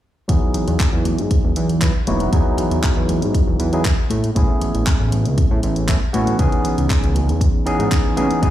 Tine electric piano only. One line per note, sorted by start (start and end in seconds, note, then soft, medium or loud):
0.28 1.78 F#3 medium
0.28 1.78 B3 medium
0.28 1.79 D#4 medium
0.28 1.79 E4 medium
0.28 1.79 G#4 medium
1.81 1.91 F#3 medium
1.81 1.91 B3 medium
1.81 1.91 D#4 medium
1.81 1.91 E4 medium
1.81 1.91 B4 medium
2.07 2.30 F#3 medium
2.07 2.30 B3 medium
2.07 2.30 D#4 medium
2.07 2.30 E4 medium
2.07 2.30 F#4 loud
2.32 3.69 F#3 medium
2.32 3.70 B3 medium
2.32 3.70 D#4 medium
2.32 3.70 E4 medium
2.32 3.70 G#4 medium
3.73 3.81 F#3 medium
3.73 3.81 B3 medium
3.73 3.82 D#4 medium
3.73 3.82 E4 medium
3.73 3.82 G#4 medium
4.35 5.85 A3 medium
4.35 5.85 B3 medium
4.35 5.86 C#4 medium
4.35 5.86 E4 medium
4.35 5.86 G#4 medium
5.88 5.98 A3 medium
5.88 5.98 B3 medium
5.88 5.98 C#4 medium
5.88 5.98 E4 medium
5.88 5.98 A4 medium
6.13 6.36 A3 medium
6.13 6.36 B3 medium
6.13 6.36 C#4 medium
6.13 6.36 E4 medium
6.13 6.36 F#4 loud
6.38 7.63 E3 medium
6.38 7.64 B3 medium
6.38 7.64 C#4 medium
6.38 7.64 D#4 medium
6.38 7.64 G#4 medium
7.66 8.14 E3 medium
7.66 8.14 B3 medium
7.66 8.14 C#4 medium
7.66 8.14 D#4 medium
7.66 8.14 G#4 medium
8.17 8.39 E3 medium
8.17 8.40 B3 medium
8.17 8.40 C#4 medium
8.17 8.40 D#4 medium
8.17 8.40 G#4 medium
8.41 8.50 F#3 medium
8.41 8.50 B3 medium
8.41 8.50 D#4 medium
8.41 8.50 E4 medium
8.41 8.50 G#4 medium